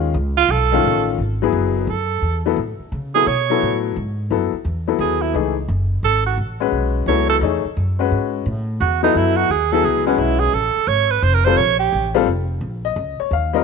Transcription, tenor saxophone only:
0.37 0.52 F4 loud
0.51 1.07 A4 loud
1.76 1.91 E4 soft
1.90 2.46 A4 medium
3.15 3.29 G#4 loud
3.27 3.84 C#5 medium
5.01 5.23 G#4 medium
5.22 5.34 E4 medium
6.05 6.25 A4 loud
6.26 6.38 F#4 medium
7.08 7.28 C#5 medium
7.30 7.37 A4 loud
8.81 9.02 F#4 medium
9.04 9.19 D#4 loud
9.17 9.39 E4 medium
9.37 9.53 F#4 loud
9.52 9.74 G#4 medium
9.72 9.87 A4 loud
9.85 10.06 G#4 medium
10.07 10.20 C#4 medium
10.19 10.41 E4 medium
10.40 10.55 G#4 loud
10.54 10.90 A4 loud
10.88 11.13 C#5 loud
11.11 11.24 B4 medium
11.23 11.36 C5 loud
11.34 11.46 A#4 medium
11.45 11.59 C5 loud
11.57 11.79 C#5 loud
11.80 12.12 G4 loud

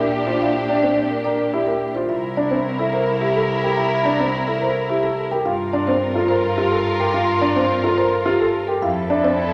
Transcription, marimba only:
0.00 0.17 A#4 medium
0.27 0.45 C5 medium
0.41 0.59 F5 medium
0.69 0.87 E5 medium
0.83 1.01 D5 medium
1.11 1.29 A#4 medium
1.24 1.43 D5 medium
1.53 1.71 G4 medium
1.66 1.85 A#4 medium
1.95 2.13 C5 medium
2.09 2.27 E5 medium
2.36 2.55 D5 medium
2.50 2.69 C5 medium
2.79 2.97 A4 medium
2.93 3.11 C5 medium
3.21 3.39 G4 medium
3.35 3.53 A4 medium
3.63 3.81 A#4 medium
3.77 3.96 E5 medium
4.05 4.24 D5 medium
4.19 4.38 C5 medium
4.47 4.66 A4 medium
4.62 4.80 C5 loud
4.89 5.08 G4 medium
5.03 5.22 A4 medium
5.31 5.50 A#4 medium
5.46 5.64 F5 loud
5.73 5.92 D5 medium
5.87 6.06 C5 medium
6.15 6.34 A4 medium
6.28 6.48 C5 loud
6.57 6.76 G4 medium
6.71 6.90 A4 loud
6.99 7.18 A#4 medium
7.14 7.32 F5 loud
7.41 7.60 D5 medium
7.56 7.74 C5 loud
7.84 8.02 A4 medium
7.98 8.16 C5 loud
8.25 8.44 G4 medium
8.40 8.58 A4 loud
8.67 8.86 A#4 medium
8.82 9.00 F5 loud
9.10 9.28 E5 medium
9.24 9.43 D5 loud

